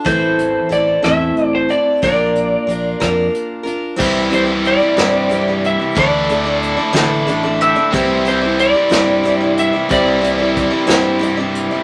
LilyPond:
<<
  \new Staff \with { instrumentName = "Mandolin" } { \time 6/8 \key c \mixolydian \tempo 4. = 61 r2. | r2. | r2. | r4. g''4 <g' e''>8~ |
<g' e''>16 r2 r8. | r2. | }
  \new Staff \with { instrumentName = "Electric slide guitar" } { \time 6/8 \key c \mixolydian c''4 d''8 e''8. c''16 d''8 | d''2 r4 | r8 c''8 d''4. e''8 | d''4. r4. |
r8 c''8 d''4. e''8 | d''2 r4 | }
  \new Staff \with { instrumentName = "Steel-string acoustic guitar" } { \time 6/8 \key c \mixolydian <a, e a c' e' a'>4 <a c' e' a'>8 <a, e a c' e' a'>4 <a c' e' a'>8 | <bes, bes d' f' bes'>4 <bes d' f' bes'>8 <bes, bes d' f' bes'>4 <d' f' bes'>8 | <c' e' g' d''>8 <c' e' g' d''>16 <e' g' d''>8 <e' g' d''>16 <c' e' g' d''>8 <c' e' g' d''>16 <e' g' d''>8 <e' g' d''>16 | <d e a d' a' d''>8 <a d' a' d''>16 <a d' a' d''>8 <a d' a' d''>16 <d e a d' a' d''>8 <a d' a' d''>16 <a d' a' d''>8 <a d' a' d''>16 |
<c' e' g' d''>8 <c' e' g' d''>16 <e' g' d''>8 <e' g' d''>16 <c' e' g' d''>8 <c' e' g' d''>16 <e' g' d''>8 <e' g' d''>16 | <c' e' g' d''>8 <c' e' g' d''>16 <e' g' d''>8 <e' g' d''>16 <c' e' g' d''>8 <c' e' g' d''>16 <e' g' d''>8 <e' g' d''>16 | }
  \new Staff \with { instrumentName = "Overdriven electric guitar" } { \clef bass \time 6/8 \key c \mixolydian r2. | r2. | <c e g c' e'>2. | <d a d' e'>2. |
<c e g c' e'>2. | <c e g c' e'>2. | }
  \new Staff \with { instrumentName = "Fingered electric bass" } { \clef bass \time 6/8 \key c \mixolydian a,,4 a,,8 e,8 r4 | bes,,4 bes,,8 f,8 r4 | c,4. g,4. | d,4. a,,4. |
c,4. g,4. | c,4. g,4. | }
  \new DrumStaff \with { instrumentName = "Drums" } \drummode { \time 6/8 <hh bd>8 hh8 hh8 <hh ss>8 hh8 hh8 | <hh bd>8 hh8 hh8 <hh bd ss>8 hh8 hh8 | <cymc bd>8 hh8 hh8 <hh sn>8 hh8 hh8 | <hh bd>8 hh8 hh8 <hh sn>8 hh8 hh8 |
<hh bd>8 hh8 hh8 <hh sn>8 hh8 hh8 | <hh bd>8 hh8 <hh bd>8 <hh sn>8 hh8 hh8 | }
>>